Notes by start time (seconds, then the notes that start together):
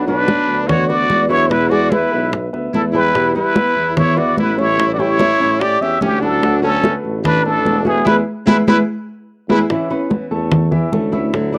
Already playing: B1 F#3 F#4 F#5
0.07 F#3 B3 D4 F#4 B4, high bongo, high conga
0.27 F#3 B3 D4 F#4 B4 D5, high bongo, high conga
0.48 D2, high conga
0.68 B3 F#4 B4 C#5 D5, muted nylon-string guitar stroke, high bongo, high conga, low conga
0.88 B3 F#4 B4 D5, high bongo, high conga
1.09 E2 F#3 B3 D4 F#4, high bongo, low bongo, high conga
1.28 F#3 B3 D4 E4 F#4 B4 C#5 E5, high bongo
1.49 B2 E3 G#3 B3 E4 B4, high bongo, high conga
1.69 E3 G#3 B3 E4 F#4 G#4 D5 G#5, high bongo, high conga
1.90 E3 G#3 B3 E4 B4 E5, high bongo, high conga
2.12 B1 B3 B4 E5
2.32 muted nylon-string guitar stroke, high bongo, high conga
2.53 D2 B3 B4 E5, high bongo, high conga
2.73 E2 E3 G#3 B3 E4 A4, high bongo, low bongo, high conga
2.92 E3 G3 G#3 B3 E4 G4 B4 G5, high bongo, high conga
3.14 B2 E3 G3 B3 E4 G4 G5, high bongo, high conga
3.35 E3 G3 B3 E4 B4, high bongo, high conga
3.55 E3 G3 B3 E4 B4 E5, high bongo, high conga
3.75 E2, high conga
3.96 B3 E4 B4 C#5 E5, muted nylon-string guitar stroke, high bongo, high conga, low conga
4.17 B3 F#4 B4 D5 E5, high bongo, high conga
4.37 A1 E3 G3 B3 E4 B4, high bongo, low bongo, high conga
4.58 E3 G3 B3 C#4 E4 C#5 E5, high bongo
4.78 E3 G3 C#4 E4, high bongo, high conga
4.93 F#4 D5
4.99 G3 C#4 E4 G4 C#5 G5, high bongo, high conga
5.19 E3 G3 C#4 C#5 E5, high bongo, high conga
5.39 A2 C#4 C#5 E5
5.60 G4 D5, muted nylon-string guitar stroke, high bongo, high conga
5.81 E2 C#4 G4 C#5 E5, high bongo, high conga
6.01 D2 E3 G3 C#4 E4 G4, high bongo, low bongo, high conga
6.21 F#3 G3 C#4 D4 E4 F#4 A4 F#5, high bongo, high conga
6.41 D3 F#3 A3 B3 F#4 F#5, high bongo, high conga
6.62 A3 B3 C#4 F#4 A4, high bongo, high conga
6.83 D3 A3 B3 F#4 A4 B4, high bongo, high conga
7.04 A1, high conga
7.23 A3 D4 A4 B4, muted nylon-string guitar stroke, high bongo, high conga, low conga
7.45 A3 D4 A4 B4, high bongo, high conga
7.64 E1 D3 A3 B3 F#4, high bongo, low bongo, high conga
7.85 A3 B3 F#4 G#4 B4 E5, high bongo, high conga
8.05 E2 G#3 B3 E4 G#4 B4, high bongo, high conga
8.46 E2 G#3 B3 E4 G#4 B4, high bongo, high conga
8.66 E2 G#3 B3 E4 G#4 B4, high bongo, high conga
9.49 E2 G#3 B3 E4 G#4 B4, high bongo, high conga
9.70 E3 B3 C#4 E4 E5, high bongo, high conga
9.90 B3 C#4 E4 B4 B5, high bongo, high conga
10.10 E3 B3 C#4 E4, high bongo, high conga
10.31 E2 A3 A4 A5, high conga
10.51 muted nylon-string guitar stroke, high bongo, high conga, low conga
10.71 E3 E4 E5, high bongo, high conga, low conga
10.92 D2 E3 A3 B3 C#4 E4 A4 A5, high bongo, low bongo, high conga
11.12 B3 C#4 E4 E5 E6, high bongo, high conga
11.33 D3 F#3 A3 D4 E4, high bongo, high conga
11.52 F#3 A3 D4 E4 D5 D6, high bongo, high conga